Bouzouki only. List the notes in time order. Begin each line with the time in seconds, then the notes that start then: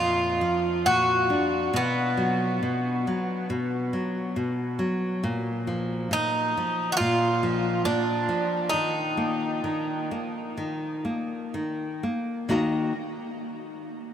Already playing: F4
0.86 F#4
1.76 B3
6.13 D#4
6.92 F#4
6.97 F4
7.85 D4
8.69 D#4